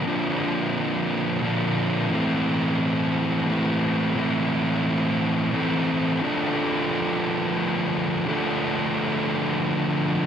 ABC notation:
X:1
M:6/8
L:1/8
Q:3/8=58
K:Dm
V:1 name="Distorted electric guitar"
[B,,D,F,B,D]4 [B,,D,F,B,D]2 | [A,,E,A,CE]4 [A,,E,A,CE]2 | [A,,E,A,CE]4 [A,,E,A,CE]2 | [D,F,A,D]6 |
[D,F,A,D]6 |]